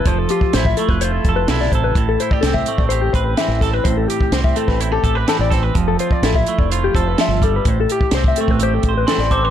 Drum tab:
HH |x-x-x-x-x-x-x-x-|x-x-x-x-x-x-x-x-|x-x-x-x-x-x-x-x-|x-x-x-x-x-x-x-x-|
SD |----o-------oo--|----o-------o-o-|----o--o----o-o-|----o-------o---|
BD |o--o-o-o--o---o-|o--o-o-o--o---o-|o--o-o-o--o---o-|o--o-o-o--o---o-|

HH |x-x-x-x-x-x-x-x-|
SD |----o-------oo--|
BD |o--o-o-o--o---o-|